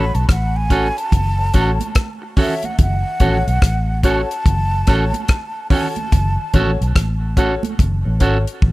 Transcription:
Already playing: fingered electric bass A1, flute B5
0.15 fingered electric bass B1, flute A5, closed hi-hat
0.29 fingered electric bass A1, flute F#5, kick, cross-stick, closed hi-hat
0.56 flute G#5
0.70 upright piano C#4 F#4 A4 C#5, clean electric guitar C#4 F#4 A4, kick, closed hi-hat
0.97 upright piano A4 C#5, flute A5, closed hi-hat
1.12 fingered electric bass F#1, kick, closed hi-hat, low conga
1.38 upright piano A4 C#5
1.53 fingered electric bass A1, upright piano C#4 F#4 A4 C#5, clean electric guitar C#4 F#4 A4, kick, closed hi-hat
1.80 closed hi-hat, high conga
1.95 kick, cross-stick, closed hi-hat
2.22 muted clean electric guitar stroke
2.37 upright piano C#4 F#4 A4 C#5, clean electric guitar C#4 F#4 A4, flute E5, kick, open hi-hat, low conga
2.63 flute F#5, closed hi-hat, high conga
2.79 fingered electric bass F#1, flute F#5, kick, closed hi-hat, low conga
3.20 fingered electric bass A1, upright piano C#4 F#4 A4 C#5, clean electric guitar C#4 F#4 A4, kick, closed hi-hat, low conga
3.48 fingered electric bass B1, closed hi-hat
3.62 fingered electric bass A1, kick, cross-stick, closed hi-hat
4.03 upright piano C#4 F#4 A4 C#5, clean electric guitar C#4 F#4 A4, flute A5, kick, closed hi-hat
4.31 closed hi-hat
4.46 fingered electric bass F#1, kick, closed hi-hat, low conga
4.87 fingered electric bass A1, upright piano C#4 F#4 A4 C#5, clean electric guitar C#4 F#4 A4, kick, cross-stick, closed hi-hat
5.13 muted clean electric guitar stroke, closed hi-hat, high conga
5.28 kick, cross-stick, closed hi-hat
5.70 upright piano C#4 F#4 A4 C#5, clean electric guitar C#4 F#4 A4, flute A5, kick, open hi-hat, low conga
5.96 closed hi-hat, high conga
6.12 fingered electric bass F#1, kick, closed hi-hat, low conga
6.53 fingered electric bass A1, upright piano C#4 F#4 A4 C#5, clean electric guitar C#4 F#4 A4, kick, closed hi-hat, low conga
6.81 fingered electric bass B1, closed hi-hat
6.96 fingered electric bass A1, kick, cross-stick, closed hi-hat, high conga
7.37 upright piano C#4 F#4 A4 C#5, clean electric guitar C#4 F#4 A4, kick, closed hi-hat, high conga
7.63 upright piano A4 C#5, closed hi-hat, high conga
7.79 fingered electric bass F#1, kick, closed hi-hat, low conga
8.05 fingered electric bass A1, upright piano A4 C#5
8.20 fingered electric bass G#1, upright piano C#4 F#4 A4 C#5, clean electric guitar C#4 F#4 A4, kick, closed hi-hat
8.47 closed hi-hat
8.62 fingered electric bass A1, kick, high tom

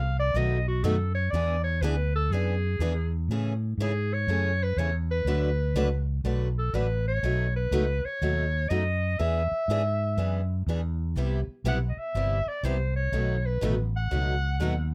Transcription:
Already playing: fretless electric bass C2, clarinet F5
0.19 clarinet D5
0.34 fretless electric bass B1, steel-string acoustic guitar B2 D#3 F#3 A3 B3 D#4 F#4 A4, clarinet D#5
0.68 clarinet F#4
0.83 fretless electric bass F#2, steel-string acoustic guitar B2 D#3 F#3 A3 B3 D#4 F#4 A4, clarinet A4
1.15 clarinet C#5
1.30 fretless electric bass E2, steel-string acoustic guitar E3 B3 B4, clarinet D5
1.35 steel-string acoustic guitar D4 G#4
1.64 clarinet C#5
1.81 fretless electric bass D2, steel-string acoustic guitar E3 B3 D4 G#4 B4, clarinet B4
2.16 clarinet A4
2.30 fretless electric bass F#2, steel-string acoustic guitar E3 B3 D4 G#4 B4, clarinet G#4
2.79 fretless electric bass E2, steel-string acoustic guitar E3 B3 D4 G#4 B4
3.28 fretless electric bass A2, steel-string acoustic guitar C#3 E3 A3 C#4 G#4
3.78 fretless electric bass G#2, steel-string acoustic guitar C#3 E3 A3
3.82 steel-string acoustic guitar C#4 G#4, clarinet G#4
4.14 clarinet C#5
4.27 fretless electric bass F#2, steel-string acoustic guitar C#3 E3 A3 C#4 G#4
4.63 clarinet B4
4.77 fretless electric bass E2, steel-string acoustic guitar C#3 E3 A3 C#4 G#4, clarinet C#5
5.11 clarinet B4
5.25 fretless electric bass D2, steel-string acoustic guitar D3 F#3 A3 D4 F#4 B4
5.74 fretless electric bass C#2, steel-string acoustic guitar D3 F#3 A3 D4 F#4 B4
6.24 fretless electric bass B1, steel-string acoustic guitar D3 F#3 A3 D4 F#4 B4
6.59 clarinet A4
6.74 fretless electric bass A1, steel-string acoustic guitar D3 F#3 A3 D4 F#4 B4, clarinet B4
7.08 clarinet C#5
7.23 fretless electric bass B1, steel-string acoustic guitar B2 F#3 A3 D#4 F#4
7.56 clarinet B4
7.71 fretless electric bass C#2, steel-string acoustic guitar B2 F#3 A3 D#4 F#4
8.05 clarinet C#5
8.22 fretless electric bass D#2, steel-string acoustic guitar B2 F#3 A3 D#4 F#4
8.69 fretless electric bass F#2, steel-string acoustic guitar B2 F#3 A3 D#4 F#4, clarinet D#5
9.19 fretless electric bass E2, steel-string acoustic guitar E3 B3 D4 G#4, clarinet E5
9.51 muted fretless electric bass stroke
9.68 fretless electric bass G#2, steel-string acoustic guitar E3 B3 D4 G#4
10.17 fretless electric bass F#2, steel-string acoustic guitar E3 B3 D4 G#4
10.67 fretless electric bass E2, steel-string acoustic guitar E3 B3 D4 G#4
11.16 fretless electric bass C2, steel-string acoustic guitar C3 G3 B3 E4 G4
11.47 muted fretless electric bass stroke
11.64 fretless electric bass B1, steel-string acoustic guitar C3 G3 B3 E4 G4, clarinet F#5
11.89 clarinet D#5
11.97 clarinet E5, muted fretless electric bass stroke
12.15 fretless electric bass G1, steel-string acoustic guitar C3 G3 B3 E4 G4
12.46 clarinet D5, muted fretless electric bass stroke
12.63 fretless electric bass C2, steel-string acoustic guitar C3 G3 B3 E4 G4, clarinet C5
12.96 clarinet C#5
13.12 fretless electric bass B1, steel-string acoustic guitar B2 D#3 F#3 A3 B3 D#4 F#4 A4
13.46 clarinet B4
13.61 fretless electric bass A1, steel-string acoustic guitar B2 D#3 F#3 A3 B3 D#4 F#4 A4
13.97 clarinet F#5
14.11 fretless electric bass C#2, steel-string acoustic guitar B2 D#3 F#3 A3 B3 D#4 F#4 A4
14.60 fretless electric bass D#2, steel-string acoustic guitar B2 D#3 F#3 A3 B3 D#4 F#4 A4

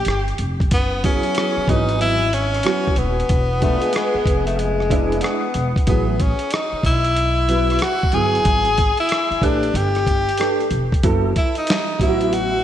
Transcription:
Already playing: tenor saxophone G4
0.05 upright bass G1, cross-stick, closed hi-hat
0.28 closed hi-hat
0.38 upright bass F1, closed hi-hat
0.60 kick, closed hi-hat
0.71 upright bass F#1, tenor saxophone B3, kick, closed hi-hat
1.03 grand piano F#3 B3 E4 G#4, tenor saxophone C#4, kick, closed hi-hat
1.23 closed hi-hat
1.35 cross-stick, closed hi-hat
1.57 muted upright bass stroke
1.67 upright bass G#1, grand piano E3 F#3 B3 B4, tenor saxophone D#4, kick, closed hi-hat
1.89 closed hi-hat
2.01 tenor saxophone E4, closed hi-hat
2.33 tenor saxophone C#4, closed hi-hat
2.54 cross-stick, closed hi-hat
2.63 grand piano F#3 B3 E4 F#4, cross-stick, closed hi-hat
2.87 kick
2.96 upright bass D#1, tenor saxophone B3, closed hi-hat
3.20 closed hi-hat
3.29 upright bass E1, kick, closed hi-hat
3.60 grand piano G#3 B3 D4 F4, tenor saxophone A3, kick, closed hi-hat
3.82 tenor saxophone G#3, closed hi-hat
3.93 tenor saxophone G#3, cross-stick, closed hi-hat
4.15 muted upright bass stroke
4.25 upright bass F1, kick, closed hi-hat
4.46 tenor saxophone A3, closed hi-hat
4.58 tenor saxophone G#3, closed hi-hat
4.80 cross-stick
4.89 grand piano G#3 B3 D4 E4, kick, closed hi-hat
5.12 closed hi-hat
5.21 tenor saxophone B3, cross-stick, closed hi-hat
5.54 upright bass E1, closed hi-hat
5.76 kick, closed hi-hat
5.86 upright bass A1, grand piano F#3 B3 E4 G#4, tenor saxophone B3, kick, closed hi-hat
6.20 tenor saxophone C#4, kick, closed hi-hat
6.39 closed hi-hat
6.51 tenor saxophone D#4, cross-stick, closed hi-hat
6.73 muted upright bass stroke
6.83 upright bass B1, tenor saxophone E4, kick, closed hi-hat
7.04 closed hi-hat
7.16 closed hi-hat
7.48 grand piano F#3 B3 E4 B4, closed hi-hat
7.70 cross-stick, closed hi-hat
7.79 tenor saxophone F#4, cross-stick, closed hi-hat
8.03 kick
8.12 upright bass G1, grand piano F#3 B3 E4 G#4, tenor saxophone G#4, closed hi-hat
8.35 closed hi-hat
8.45 upright bass G#1, kick, closed hi-hat
8.65 closed hi-hat
8.78 kick, closed hi-hat
8.97 tenor saxophone E4, closed hi-hat
9.09 cross-stick, closed hi-hat
9.31 muted upright bass stroke, closed hi-hat
9.42 upright bass A1, grand piano A3 D4 G4 B4, tenor saxophone D4, kick, closed hi-hat
9.63 closed hi-hat
9.74 upright bass G1, tenor saxophone G4, closed hi-hat
9.95 cross-stick, closed hi-hat
10.07 kick, closed hi-hat
10.29 closed hi-hat
10.38 grand piano A3 D4 G4 B4, cross-stick, closed hi-hat
10.60 closed hi-hat
10.71 upright bass E1, closed hi-hat
10.92 kick, closed hi-hat
11.03 upright bass F#1, grand piano F#3 B3 E4 A4, kick, closed hi-hat
11.36 tenor saxophone E4, kick, closed hi-hat
11.55 tenor saxophone D#4, closed hi-hat
11.67 snare, closed hi-hat
12.00 upright bass A1, grand piano F#3 B3 E4 F4, tenor saxophone E4, kick, closed hi-hat
12.08 grand piano F#4
12.21 closed hi-hat
12.33 tenor saxophone F#4, closed hi-hat

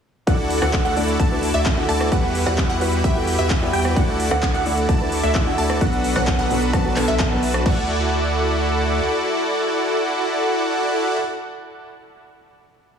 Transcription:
0.27 sub bass D2, felt piano D3 A3 E4 F#4 D5, supersaw synth E4 F#4 A4 D5 F#5, synth pluck F#5, kick, closed hi-hat
0.50 open hi-hat
0.61 sub bass D2, felt piano D3 A3 E4 F#4 F#5, supersaw synth E4 F#4 A4 D5 F#5, synth pluck F#5, cross-stick, closed hi-hat
0.73 kick, clap, closed hi-hat
0.85 sub bass D2, supersaw synth E4 F#4 A4 D5 F#5, synth pluck F#5, closed hi-hat
0.96 felt piano D3 A3 E4 F#4 D5, open hi-hat
1.08 closed hi-hat
1.19 sub bass D2, supersaw synth E4 F#4 A4 D5 A5, synth pluck A5, kick, closed hi-hat
1.31 felt piano D3 A3 E4 F#4 B4
1.43 open hi-hat
1.54 sub bass D2, supersaw synth E4 F#4 A4 D5 E5, synth pluck E5, closed hi-hat
1.66 kick, clap, closed hi-hat
1.77 felt piano D3 A3 E4 F#4 F#5
1.89 sub bass D2, supersaw synth E4 F#4 A4 D5 A5, synth pluck A5, open hi-hat
2.01 cross-stick
2.11 sub bass E2, felt piano G3 E4 B4 F#5, supersaw synth E4 F#4 G4 B4 F#5, synth pluck F#5, kick, closed hi-hat
2.35 open hi-hat
2.46 sub bass E2, felt piano G3 E4 F#4 D5, supersaw synth E4 F#4 G4 B4 F#5, synth pluck F#5, cross-stick, closed hi-hat
2.58 kick, clap, closed hi-hat
2.69 sub bass E2, supersaw synth E4 F#4 G4 B4 F#5, synth pluck F#5, closed hi-hat
2.81 felt piano G3 E4 F#4 B4, open hi-hat
2.93 closed hi-hat
3.04 sub bass E2, supersaw synth E4 F#4 G4 B4 G5, synth pluck E5, kick, closed hi-hat
3.15 felt piano G3 E4 F#4 A4
3.27 open hi-hat
3.39 sub bass E2, supersaw synth E4 F#4 G4 B4 E5, synth pluck E5, closed hi-hat
3.50 kick, clap, closed hi-hat
3.61 felt piano G3 E4 F#4 D5
3.73 sub bass E2, supersaw synth E4 F#4 G4 B4 G5, synth pluck G5, open hi-hat
3.85 cross-stick, closed hi-hat
3.96 sub bass D2, felt piano D3 A3 E4 F#4 D5, supersaw synth D5 F#5, synth pluck F#5, kick, closed hi-hat
4.20 open hi-hat
4.30 sub bass D2, felt piano D3 A3 E4 F#4 F#5, supersaw synth E4 F#4 A4 D5 F#5, synth pluck F#5, cross-stick
4.43 kick, clap, closed hi-hat
4.54 sub bass D2, supersaw synth E4 F#4 A4 D5 F#5, synth pluck F#5, closed hi-hat
4.65 felt piano D3 A3 E4 F#4 D5, open hi-hat
4.77 closed hi-hat
4.89 sub bass D2, supersaw synth E4 F#4 A4 D5 A5, synth pluck A5, kick, closed hi-hat
5.00 felt piano D3 A3 E4 F#4 B4
5.12 open hi-hat
5.23 sub bass D2, supersaw synth E4 F#4 A4 D5 E5, synth pluck E5, closed hi-hat
5.35 kick, clap, closed hi-hat
5.46 felt piano D3 A3 E4 F#4 F#5
5.58 sub bass D2, supersaw synth E4 F#4 A4 D5 A5, synth pluck A5, open hi-hat
5.70 cross-stick, closed hi-hat
5.81 sub bass B1, felt piano B2 F#3 B3 D4 A4, supersaw synth D4 F#4 A4 B4 F#5, synth pluck F#5, kick, closed hi-hat
5.93 closed hi-hat
6.04 open hi-hat
6.15 sub bass B1, felt piano B2 F#3 B3 D4 C#5, supersaw synth D4 F#4 A4 B4 F#5, synth pluck F#5, cross-stick
6.27 kick, clap, closed hi-hat
6.39 sub bass B1, supersaw synth D4 F#4 A4 B4 F#5, synth pluck F#5, closed hi-hat
6.50 felt piano B2 F#3 B3 D4 A4, open hi-hat
6.62 closed hi-hat
6.73 sub bass B1, supersaw synth D4 F#4 B4, synth pluck A5, kick, cross-stick, closed hi-hat
6.84 felt piano B2 F#3 B3 D4 F#4
6.96 felt piano B2 F#3 B3 D4 A4, clap, open hi-hat
7.08 sub bass B1, supersaw synth D4 F#4 A4 B4 E5, synth pluck E5, closed hi-hat
7.19 sub bass B1, supersaw synth D4 F#4 A4 B4 A5, synth pluck A5, kick, clap, closed hi-hat
7.30 felt piano B2 F#3 B3 D4 B4
7.43 open hi-hat
7.54 cross-stick
7.64 sub bass D2, felt piano A3 E4 F#4 D5, supersaw synth E4 F#4 A4 D5 F#5, synth pluck F#5, kick, crash

